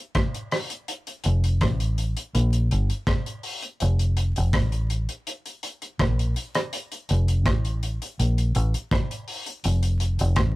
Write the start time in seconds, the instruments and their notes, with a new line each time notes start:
0.15 kick, cross-stick, closed hi-hat
0.34 closed hi-hat
0.51 cross-stick, open hi-hat
0.70 closed hi-hat
0.88 closed hi-hat
1.07 closed hi-hat
1.24 fingered electric bass F1, closed hi-hat
1.44 closed hi-hat
1.61 fingered electric bass A1, kick, cross-stick, closed hi-hat
1.80 closed hi-hat
1.98 closed hi-hat
2.17 closed hi-hat
2.35 fingered electric bass A#1, closed hi-hat
2.53 closed hi-hat
2.71 fingered electric bass G1, closed hi-hat
2.90 closed hi-hat
3.07 kick, cross-stick, closed hi-hat
3.26 closed hi-hat
3.43 open hi-hat
3.62 closed hi-hat
3.80 fingered electric bass F1, closed hi-hat
3.99 closed hi-hat
4.17 closed hi-hat
4.36 fingered electric bass F1, closed hi-hat
4.53 fingered electric bass A1, kick, cross-stick, closed hi-hat
4.72 closed hi-hat
4.90 closed hi-hat
5.09 closed hi-hat
5.27 closed hi-hat
5.46 closed hi-hat
5.63 closed hi-hat
5.82 closed hi-hat
5.99 fingered electric bass A#1, kick, cross-stick, closed hi-hat
6.19 closed hi-hat
6.36 closed hi-hat
6.55 cross-stick, closed hi-hat
6.73 closed hi-hat
6.92 closed hi-hat
7.09 fingered electric bass F1, closed hi-hat
7.28 closed hi-hat
7.46 fingered electric bass A1, kick, cross-stick, closed hi-hat
7.65 closed hi-hat
7.83 closed hi-hat
8.02 closed hi-hat
8.19 fingered electric bass A#1, closed hi-hat
8.38 closed hi-hat
8.55 fingered electric bass A1, closed hi-hat
8.74 closed hi-hat
8.91 kick, cross-stick, closed hi-hat
9.11 closed hi-hat
9.28 open hi-hat
9.46 closed hi-hat
9.64 fingered electric bass F1, closed hi-hat
9.83 closed hi-hat
10.00 closed hi-hat
10.19 fingered electric bass F1, closed hi-hat
10.36 fingered electric bass A1, kick, cross-stick, closed hi-hat